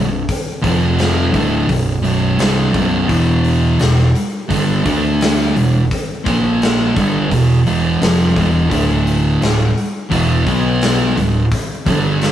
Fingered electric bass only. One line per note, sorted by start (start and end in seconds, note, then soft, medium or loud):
0.00 0.26 B0 medium
0.64 1.30 F1 loud
1.34 1.67 D1 medium
1.69 2.02 B0 medium
2.04 2.37 B0 medium
2.40 2.72 C1 medium
2.74 3.07 B0 medium
3.09 3.76 E1 medium
3.80 4.13 E1 medium
4.51 4.83 G1 medium
4.86 5.52 D2 medium
5.57 5.89 E1 medium
6.27 6.92 A#1 medium
6.97 7.29 G1 medium
7.31 7.64 E1 medium
7.67 7.99 E1 medium
8.01 8.34 F1 medium
8.36 8.69 E1 loud
8.72 9.38 D1 loud
9.42 9.74 D1 medium
10.12 10.44 E1 medium
10.46 11.12 B1 medium
11.16 11.49 D1 medium
11.87 12.32 G1 loud